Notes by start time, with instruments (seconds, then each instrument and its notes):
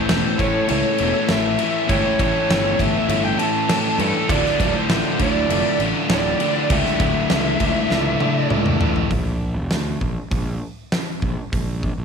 Already playing: overdriven electric guitar A2 E3 A3, tonewheel organ C#4 A4 E5, lead electric guitar C5
0.09 fingered electric bass E1, overdriven electric guitar A2 E3 A3, reed electric piano C#4 E4 A4 E5, snare, crash
0.38 overdriven electric guitar A2 E3 A3, fingered electric bass A2, lead electric guitar C#5, kick, crash
0.67 fingered electric bass C#2, overdriven electric guitar A2 E3 A3, reed electric piano E4 A4 C#5, lead electric guitar C#5, crash
0.72 reed electric piano E5
0.98 fingered electric bass E1, overdriven electric guitar A2 E3 A3, crash
1.28 fingered electric bass A1, overdriven electric guitar A2 E3 A3, reed electric piano E4 A4 C#5 E5, lead electric guitar E5, snare, crash
1.58 overdriven electric guitar A2 E3 A3, crash
1.87 fingered electric bass G1, overdriven electric guitar A2 E3 A3, reed electric piano E4, tonewheel organ A4 C#5 E5, lead electric guitar C#5, kick, crash
1.91 reed electric piano A4 C#5 G5
2.18 fingered electric bass A1, overdriven electric guitar A2 E3 A3, lead electric guitar C#5, kick, crash
2.48 fingered electric bass G1, overdriven electric guitar A2 E3 A3, reed electric piano E4 A4 C#5 G5, snare, crash
2.72 lead electric guitar C#5
2.77 fingered electric bass G1, overdriven electric guitar A2 E3 A3, lead electric guitar E5, kick, crash
3.07 fingered electric bass G1, overdriven electric guitar A2 E3 A3, reed electric piano E4 A4 C#5 E5, lead electric guitar E5, crash
3.24 lead electric guitar G5
3.37 overdriven electric guitar A2 E3 A3, lead electric guitar A5, crash
3.67 overdriven electric guitar A2 E3 A3, reed electric piano E4 A4 C#5 G5, snare, crash
3.98 fingered electric bass G2, overdriven electric guitar A2 E3 A3, lead electric guitar A4, crash
4.29 fingered electric bass D1, overdriven electric guitar D2 A2 D3, reed electric piano F4 A4 D5 E5, tonewheel organ F4 D5 E5, lead electric guitar D5, kick, crash
4.46 snare
4.60 fingered electric bass D1, overdriven electric guitar D2 A2 D3, kick, crash
4.75 lead electric guitar C5
4.89 fingered electric bass A1, overdriven electric guitar D2 A2 D3, reed electric piano F4 A4 D5 E5, snare, crash
5.19 fingered electric bass D2, overdriven electric guitar D2 A2 D3, lead electric guitar D5, kick, crash
5.49 fingered electric bass F1, overdriven electric guitar D2 A2 D3, reed electric piano F4 A4 D5 E5, crash
5.79 fingered electric bass A1, overdriven electric guitar D2 A2 D3, crash
6.09 fingered electric bass D1, overdriven electric guitar D2 A2 D3, reed electric piano F4 A4 D5 G5, lead electric guitar D5, snare, crash
6.40 overdriven electric guitar D2 A2 D3, crash
6.70 fingered electric bass C#2, overdriven electric guitar D2 A2 D3, reed electric piano F4 A4 D5 G5, tonewheel organ D5 E5, lead electric guitar E5, kick, crash
6.85 snare
6.99 fingered electric bass D1, overdriven electric guitar D2 A2 D3, kick, crash
7.29 fingered electric bass C#2, overdriven electric guitar D2 A2 D3, reed electric piano F4 A4 D5 E5, snare, crash
7.60 fingered electric bass C#2, overdriven electric guitar D2 A2 D3, kick, crash
7.89 fingered electric bass C#2, overdriven electric guitar D2 A2 D3, reed electric piano F4 A4 D5 E5, snare
8.19 overdriven electric guitar D2 A2 D3, high tom
8.50 fingered electric bass C#2, overdriven electric guitar D2 A2 D3, reed electric piano F4 A4 D5 E5, mid tom
8.66 mid tom
8.80 fingered electric bass A1, overdriven electric guitar D2 A2 D3, floor tom
8.96 floor tom
9.11 fingered electric bass A#1, kick, open hi-hat
9.55 fingered electric bass F1
9.71 fingered electric bass D2, snare, open hi-hat
10.01 fingered electric bass A#1, kick
10.31 fingered electric bass A#1, kick, open hi-hat
10.92 snare, open hi-hat
11.22 fingered electric bass A#1, kick
11.52 fingered electric bass A#1, kick, open hi-hat
11.83 kick
11.98 fingered electric bass A#1